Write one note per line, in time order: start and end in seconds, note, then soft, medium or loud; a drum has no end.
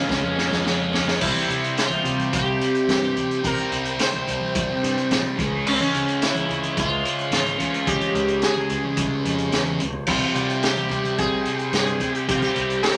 0.00 0.10 G#1 medium
0.00 0.35 C#3 medium
0.00 0.24 G#3 medium
0.00 0.22 C#4 medium
0.00 0.89 F4 medium
0.00 1.16 C#5 medium
0.00 1.16 F5 medium
0.00 1.16 G#5 medium
0.09 0.22 C#2 medium
0.09 kick loud
0.09 snare medium
0.23 0.48 F2 medium
0.23 0.37 G#3 medium
0.23 0.38 C#4 medium
0.36 0.64 C#3 medium
0.36 0.52 G#3 medium
0.36 0.50 C#4 medium
0.36 snare medium
0.51 0.64 F2 loud
0.51 0.65 G#3 medium
0.51 0.66 C#4 medium
0.51 snare medium
0.51 low conga medium
0.65 1.17 F2 loud
0.65 0.91 C#3 loud
0.65 0.93 G#3 medium
0.65 0.94 C#4 loud
0.65 snare medium
0.93 1.19 C#3 medium
0.93 1.08 G#3 medium
0.93 1.06 C#4 medium
0.93 snare loud
0.93 low conga medium
1.07 1.20 G#3 medium
1.07 1.19 C#4 medium
1.07 snare loud
1.07 high conga medium
1.19 1.34 C2 loud
1.19 3.42 C3 medium
1.19 3.43 G3 medium
1.19 1.79 E4 medium
1.19 12.97 C5 medium
1.19 5.33 G5 medium
1.19 kick loud
1.19 crash loud
1.24 3.46 C4 medium
1.35 snare soft
1.35 closed hi-hat soft
1.35 high conga medium
1.48 2.01 C3 medium
1.48 closed hi-hat medium
1.48 low conga medium
1.64 closed hi-hat soft
1.77 2.30 F4 medium
1.77 snare loud
1.77 closed hi-hat medium
1.90 closed hi-hat soft
1.90 high conga medium
2.04 2.29 C3 medium
2.04 closed hi-hat medium
2.04 low conga medium
2.18 closed hi-hat soft
2.18 high conga medium
2.33 2.58 C2 medium
2.33 2.90 G4 medium
2.33 kick loud
2.33 closed hi-hat loud
2.61 closed hi-hat medium
2.75 closed hi-hat soft
2.88 3.13 G2 medium
2.88 3.42 G4 medium
2.88 snare loud
2.88 closed hi-hat medium
2.88 high conga medium
3.03 closed hi-hat soft
3.16 closed hi-hat medium
3.16 high conga medium
3.16 low conga medium
3.31 closed hi-hat medium
3.43 5.36 C3 medium
3.43 3.57 C3 loud
3.43 5.37 G3 medium
3.43 5.40 C4 loud
3.43 4.02 A#4 loud
3.43 kick loud
3.43 closed hi-hat loud
3.58 closed hi-hat soft
3.58 high conga medium
3.72 3.97 C2 medium
3.72 closed hi-hat medium
3.72 low conga medium
3.85 closed hi-hat soft
3.99 5.36 C5 medium
3.99 snare loud
3.99 closed hi-hat loud
4.14 high conga medium
4.27 4.40 C2 medium
4.27 closed hi-hat medium
4.27 low conga medium
4.41 high conga medium
4.55 4.68 A#1 medium
4.55 kick loud
4.55 closed hi-hat loud
4.83 4.95 G2 medium
4.83 closed hi-hat medium
4.98 closed hi-hat soft
5.11 5.23 A#1 medium
5.11 snare loud
5.11 closed hi-hat loud
5.11 high conga medium
5.36 5.64 C#2 loud
5.36 7.57 C#3 loud
5.36 7.59 G#3 loud
5.36 10.03 C#5 medium
5.36 kick loud
5.36 closed hi-hat medium
5.36 high conga medium
5.36 low conga medium
5.41 7.59 C#4 loud
5.66 5.79 C#2 loud
5.66 5.73 C#4 medium
5.66 crash loud
5.74 5.80 C4 medium
5.81 6.23 C#4 medium
5.81 closed hi-hat soft
5.81 high conga medium
5.94 6.46 C#3 medium
5.94 closed hi-hat medium
5.94 low conga medium
6.08 closed hi-hat soft
6.22 6.79 E4 medium
6.22 snare loud
6.22 closed hi-hat loud
6.35 closed hi-hat soft
6.35 high conga medium
6.49 6.74 C#3 medium
6.49 closed hi-hat medium
6.49 low conga medium
6.63 closed hi-hat medium
6.63 high conga medium
6.77 7.02 C#2 loud
6.77 7.32 F4 loud
6.77 kick loud
6.77 closed hi-hat loud
7.05 closed hi-hat medium
7.18 closed hi-hat soft
7.31 7.57 G#1 medium
7.31 7.88 F4 medium
7.31 snare loud
7.31 closed hi-hat medium
7.31 high conga medium
7.46 closed hi-hat soft
7.58 9.78 C#3 medium
7.58 9.79 G#3 medium
7.58 9.80 C#4 loud
7.58 closed hi-hat medium
7.58 high conga medium
7.58 low conga medium
7.74 closed hi-hat soft
7.87 8.00 C#3 loud
7.87 8.44 G4 loud
7.87 kick loud
7.87 closed hi-hat loud
7.87 low conga medium
8.01 closed hi-hat medium
8.01 high conga medium
8.14 8.40 C#2 medium
8.14 closed hi-hat medium
8.28 closed hi-hat soft
8.42 9.77 G#4 medium
8.42 snare loud
8.42 closed hi-hat loud
8.57 high conga medium
8.69 8.83 C#2 medium
8.69 closed hi-hat medium
8.69 low conga medium
8.84 high conga medium
8.97 9.10 C2 medium
8.97 kick loud
8.97 closed hi-hat loud
9.25 9.50 F2 medium
9.25 closed hi-hat medium
9.38 closed hi-hat soft
9.52 9.78 E2 medium
9.52 snare loud
9.52 closed hi-hat loud
9.52 high conga medium
9.66 high conga medium
9.79 10.06 C#2 medium
9.79 closed hi-hat medium
9.79 low conga medium
9.93 low conga medium
10.07 10.21 C2 loud
10.07 12.27 C3 medium
10.07 12.30 G3 medium
10.07 10.63 F4 medium
10.07 12.97 G5 medium
10.07 kick loud
10.07 crash loud
10.11 12.31 C4 medium
10.20 closed hi-hat soft
10.20 high conga medium
10.35 10.86 C3 loud
10.35 closed hi-hat medium
10.35 low conga medium
10.49 closed hi-hat soft
10.63 11.15 G4 medium
10.63 snare loud
10.63 closed hi-hat medium
10.76 closed hi-hat soft
10.76 high conga medium
10.89 11.16 C3 loud
10.89 closed hi-hat medium
10.89 low conga medium
11.04 closed hi-hat soft
11.04 high conga medium
11.18 11.44 C2 medium
11.18 11.73 G#4 medium
11.18 kick loud
11.18 closed hi-hat medium
11.45 closed hi-hat medium
11.59 closed hi-hat soft
11.73 11.98 G2 loud
11.73 12.15 G#4 medium
11.73 snare loud
11.73 closed hi-hat medium
11.73 high conga medium
11.87 closed hi-hat soft
12.00 closed hi-hat medium
12.00 high conga medium
12.00 low conga medium
12.15 12.28 G4 medium
12.15 closed hi-hat soft
12.28 12.97 C3 medium
12.28 12.41 C3 loud
12.28 12.97 G3 medium
12.28 12.97 C4 medium
12.28 12.35 G4 loud
12.28 kick loud
12.28 closed hi-hat loud
12.35 12.42 F4 medium
12.42 12.85 G4 medium
12.42 snare soft
12.42 closed hi-hat medium
12.42 high conga medium
12.55 12.81 C2 medium
12.55 closed hi-hat medium
12.55 low conga medium
12.70 closed hi-hat soft
12.83 12.97 A#4 loud
12.83 snare loud
12.83 closed hi-hat medium